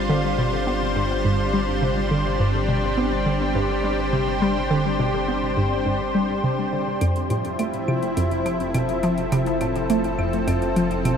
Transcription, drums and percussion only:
0, 0, Header, 1, 2, 480
1, 0, Start_track
1, 0, Tempo, 576923
1, 76, Time_signature, 4, 2, 24, 8
1, 9297, End_track
2, 0, Start_track
2, 0, Title_t, "Drums"
2, 5834, Note_on_c, 9, 42, 86
2, 5834, Note_on_c, 9, 75, 76
2, 5918, Note_off_c, 9, 42, 0
2, 5918, Note_off_c, 9, 75, 0
2, 5955, Note_on_c, 9, 42, 37
2, 6039, Note_off_c, 9, 42, 0
2, 6075, Note_on_c, 9, 42, 61
2, 6075, Note_on_c, 9, 75, 42
2, 6158, Note_off_c, 9, 42, 0
2, 6158, Note_off_c, 9, 75, 0
2, 6196, Note_on_c, 9, 42, 38
2, 6279, Note_off_c, 9, 42, 0
2, 6315, Note_on_c, 9, 42, 83
2, 6315, Note_on_c, 9, 75, 73
2, 6399, Note_off_c, 9, 42, 0
2, 6399, Note_off_c, 9, 75, 0
2, 6436, Note_on_c, 9, 42, 36
2, 6519, Note_off_c, 9, 42, 0
2, 6557, Note_on_c, 9, 75, 78
2, 6641, Note_off_c, 9, 75, 0
2, 6677, Note_on_c, 9, 42, 36
2, 6761, Note_off_c, 9, 42, 0
2, 6797, Note_on_c, 9, 42, 90
2, 6797, Note_on_c, 9, 75, 45
2, 6880, Note_off_c, 9, 42, 0
2, 6880, Note_off_c, 9, 75, 0
2, 6917, Note_on_c, 9, 42, 35
2, 7000, Note_off_c, 9, 42, 0
2, 7037, Note_on_c, 9, 42, 61
2, 7037, Note_on_c, 9, 75, 77
2, 7121, Note_off_c, 9, 42, 0
2, 7121, Note_off_c, 9, 75, 0
2, 7157, Note_on_c, 9, 42, 36
2, 7240, Note_off_c, 9, 42, 0
2, 7276, Note_on_c, 9, 42, 86
2, 7276, Note_on_c, 9, 75, 78
2, 7359, Note_off_c, 9, 42, 0
2, 7359, Note_off_c, 9, 75, 0
2, 7395, Note_on_c, 9, 42, 37
2, 7479, Note_off_c, 9, 42, 0
2, 7513, Note_on_c, 9, 42, 60
2, 7513, Note_on_c, 9, 75, 43
2, 7597, Note_off_c, 9, 42, 0
2, 7597, Note_off_c, 9, 75, 0
2, 7635, Note_on_c, 9, 42, 37
2, 7718, Note_off_c, 9, 42, 0
2, 7755, Note_on_c, 9, 42, 89
2, 7755, Note_on_c, 9, 75, 75
2, 7838, Note_off_c, 9, 42, 0
2, 7838, Note_off_c, 9, 75, 0
2, 7874, Note_on_c, 9, 42, 39
2, 7957, Note_off_c, 9, 42, 0
2, 7994, Note_on_c, 9, 42, 65
2, 7994, Note_on_c, 9, 75, 76
2, 8077, Note_off_c, 9, 42, 0
2, 8077, Note_off_c, 9, 75, 0
2, 8116, Note_on_c, 9, 42, 39
2, 8200, Note_off_c, 9, 42, 0
2, 8234, Note_on_c, 9, 42, 87
2, 8234, Note_on_c, 9, 75, 43
2, 8318, Note_off_c, 9, 42, 0
2, 8318, Note_off_c, 9, 75, 0
2, 8355, Note_on_c, 9, 42, 37
2, 8439, Note_off_c, 9, 42, 0
2, 8476, Note_on_c, 9, 75, 78
2, 8559, Note_off_c, 9, 75, 0
2, 8596, Note_on_c, 9, 42, 36
2, 8679, Note_off_c, 9, 42, 0
2, 8716, Note_on_c, 9, 42, 90
2, 8716, Note_on_c, 9, 75, 79
2, 8799, Note_off_c, 9, 42, 0
2, 8799, Note_off_c, 9, 75, 0
2, 8836, Note_on_c, 9, 42, 38
2, 8919, Note_off_c, 9, 42, 0
2, 8955, Note_on_c, 9, 42, 64
2, 8955, Note_on_c, 9, 75, 45
2, 9038, Note_off_c, 9, 42, 0
2, 9038, Note_off_c, 9, 75, 0
2, 9076, Note_on_c, 9, 42, 39
2, 9159, Note_off_c, 9, 42, 0
2, 9195, Note_on_c, 9, 42, 90
2, 9195, Note_on_c, 9, 75, 80
2, 9278, Note_off_c, 9, 42, 0
2, 9278, Note_off_c, 9, 75, 0
2, 9297, End_track
0, 0, End_of_file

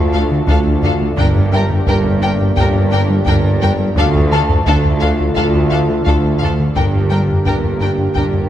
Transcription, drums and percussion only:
0, 0, Header, 1, 2, 480
1, 0, Start_track
1, 0, Key_signature, -1, "minor"
1, 0, Tempo, 697674
1, 810, Time_signature, 4, 2, 24, 8
1, 5842, End_track
2, 0, Start_track
2, 0, Title_t, "Taiko and cinematic ensemble drums"
2, 328, Note_on_c, 9, 41, 84
2, 397, Note_off_c, 9, 41, 0
2, 568, Note_on_c, 9, 43, 59
2, 637, Note_off_c, 9, 43, 0
2, 807, Note_on_c, 9, 41, 106
2, 876, Note_off_c, 9, 41, 0
2, 930, Note_on_c, 9, 43, 46
2, 999, Note_off_c, 9, 43, 0
2, 1167, Note_on_c, 9, 43, 54
2, 1236, Note_off_c, 9, 43, 0
2, 1286, Note_on_c, 9, 41, 73
2, 1354, Note_off_c, 9, 41, 0
2, 1405, Note_on_c, 9, 43, 47
2, 1474, Note_off_c, 9, 43, 0
2, 1768, Note_on_c, 9, 41, 91
2, 1836, Note_off_c, 9, 41, 0
2, 1887, Note_on_c, 9, 43, 50
2, 1956, Note_off_c, 9, 43, 0
2, 2245, Note_on_c, 9, 41, 94
2, 2313, Note_off_c, 9, 41, 0
2, 2485, Note_on_c, 9, 43, 62
2, 2554, Note_off_c, 9, 43, 0
2, 2725, Note_on_c, 9, 41, 108
2, 2794, Note_off_c, 9, 41, 0
2, 2847, Note_on_c, 9, 43, 47
2, 2915, Note_off_c, 9, 43, 0
2, 3089, Note_on_c, 9, 43, 47
2, 3158, Note_off_c, 9, 43, 0
2, 3206, Note_on_c, 9, 41, 78
2, 3275, Note_off_c, 9, 41, 0
2, 3332, Note_on_c, 9, 43, 44
2, 3400, Note_off_c, 9, 43, 0
2, 3691, Note_on_c, 9, 41, 72
2, 3760, Note_off_c, 9, 41, 0
2, 3812, Note_on_c, 9, 43, 47
2, 3881, Note_off_c, 9, 43, 0
2, 4173, Note_on_c, 9, 41, 78
2, 4242, Note_off_c, 9, 41, 0
2, 4415, Note_on_c, 9, 43, 59
2, 4483, Note_off_c, 9, 43, 0
2, 4651, Note_on_c, 9, 41, 97
2, 4720, Note_off_c, 9, 41, 0
2, 4775, Note_on_c, 9, 43, 41
2, 4844, Note_off_c, 9, 43, 0
2, 5014, Note_on_c, 9, 43, 41
2, 5083, Note_off_c, 9, 43, 0
2, 5134, Note_on_c, 9, 41, 76
2, 5202, Note_off_c, 9, 41, 0
2, 5255, Note_on_c, 9, 43, 43
2, 5324, Note_off_c, 9, 43, 0
2, 5612, Note_on_c, 9, 41, 76
2, 5681, Note_off_c, 9, 41, 0
2, 5731, Note_on_c, 9, 43, 43
2, 5800, Note_off_c, 9, 43, 0
2, 5842, End_track
0, 0, End_of_file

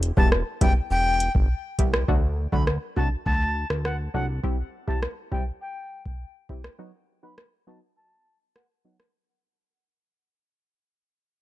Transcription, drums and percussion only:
0, 0, Header, 1, 2, 480
1, 0, Start_track
1, 0, Tempo, 588235
1, 1700, Time_signature, 4, 2, 24, 8
1, 9318, End_track
2, 0, Start_track
2, 0, Title_t, "Drums"
2, 22, Note_on_c, 9, 42, 74
2, 103, Note_off_c, 9, 42, 0
2, 140, Note_on_c, 9, 36, 89
2, 222, Note_off_c, 9, 36, 0
2, 261, Note_on_c, 9, 37, 94
2, 343, Note_off_c, 9, 37, 0
2, 500, Note_on_c, 9, 36, 91
2, 500, Note_on_c, 9, 42, 74
2, 581, Note_off_c, 9, 42, 0
2, 582, Note_off_c, 9, 36, 0
2, 981, Note_on_c, 9, 42, 77
2, 1063, Note_off_c, 9, 42, 0
2, 1101, Note_on_c, 9, 36, 90
2, 1182, Note_off_c, 9, 36, 0
2, 1458, Note_on_c, 9, 36, 95
2, 1458, Note_on_c, 9, 42, 67
2, 1539, Note_off_c, 9, 36, 0
2, 1540, Note_off_c, 9, 42, 0
2, 1580, Note_on_c, 9, 37, 100
2, 1661, Note_off_c, 9, 37, 0
2, 1700, Note_on_c, 9, 36, 108
2, 1782, Note_off_c, 9, 36, 0
2, 2060, Note_on_c, 9, 36, 87
2, 2141, Note_off_c, 9, 36, 0
2, 2181, Note_on_c, 9, 37, 91
2, 2262, Note_off_c, 9, 37, 0
2, 2420, Note_on_c, 9, 36, 96
2, 2502, Note_off_c, 9, 36, 0
2, 2662, Note_on_c, 9, 36, 95
2, 2744, Note_off_c, 9, 36, 0
2, 3021, Note_on_c, 9, 37, 93
2, 3103, Note_off_c, 9, 37, 0
2, 3142, Note_on_c, 9, 37, 85
2, 3223, Note_off_c, 9, 37, 0
2, 3621, Note_on_c, 9, 36, 112
2, 3702, Note_off_c, 9, 36, 0
2, 3980, Note_on_c, 9, 36, 89
2, 4061, Note_off_c, 9, 36, 0
2, 4101, Note_on_c, 9, 37, 93
2, 4182, Note_off_c, 9, 37, 0
2, 4340, Note_on_c, 9, 36, 91
2, 4422, Note_off_c, 9, 36, 0
2, 4941, Note_on_c, 9, 36, 88
2, 5023, Note_off_c, 9, 36, 0
2, 5298, Note_on_c, 9, 36, 94
2, 5380, Note_off_c, 9, 36, 0
2, 5421, Note_on_c, 9, 37, 91
2, 5503, Note_off_c, 9, 37, 0
2, 6021, Note_on_c, 9, 37, 93
2, 6102, Note_off_c, 9, 37, 0
2, 6983, Note_on_c, 9, 37, 85
2, 7064, Note_off_c, 9, 37, 0
2, 7341, Note_on_c, 9, 37, 91
2, 7423, Note_off_c, 9, 37, 0
2, 9318, End_track
0, 0, End_of_file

